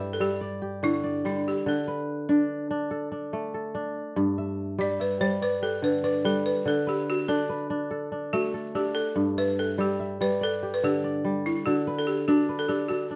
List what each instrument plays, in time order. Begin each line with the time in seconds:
Already playing: kora G2 G3 A3 D4 E4 G4, balafon B4
0.00 kora E5
0.13 balafon A4
0.20 kora G3, balafon G4
0.41 kora D5
0.62 kora G4
0.83 kora D3, balafon E4
1.04 kora D5
1.25 kora G3, balafon D4
1.48 balafon G4
1.66 kora D3, balafon A4
1.88 kora B4
2.29 kora D4
2.71 kora D4
2.91 kora A4
3.12 kora D4
3.33 kora A3
3.54 kora A4
3.75 kora D4
4.16 kora G2
4.38 kora E5
4.79 kora G3 G4, balafon D5
5.00 balafon B4, kora E5
5.21 kora G3, balafon C5
5.42 balafon B4, kora D5
5.62 kora G4, balafon A4
5.82 kora D3, balafon B4
6.04 balafon B4, kora D5
6.25 kora G3, balafon A4
6.46 balafon B4
6.66 kora D3, balafon A4
6.87 balafon G4, kora B4
7.10 balafon F#4
7.28 kora D4, balafon A4
7.49 kora B4
7.70 kora D4
7.91 kora A4
8.12 kora D4
8.33 kora A3, balafon F#4
8.54 kora A4
8.75 kora D4, balafon G4
8.95 balafon A4
9.16 kora G2
9.38 balafon B4, kora E5
9.59 balafon A4
9.78 kora G3 G4, balafon G4
10.00 kora E5
10.21 kora G3, balafon B4
10.41 balafon A4, kora D5
10.63 kora G4
10.74 balafon B4
10.83 kora D3, balafon G4
11.04 kora D5
11.25 kora G3
11.46 balafon E4
11.66 kora D3, balafon F#4
11.87 kora B4
11.99 balafon A4
12.07 balafon G4
12.28 kora D4, balafon F#4
12.49 kora B4
12.59 balafon A4
12.69 kora D4, balafon G4
12.89 balafon F#4, kora A4
13.11 kora D4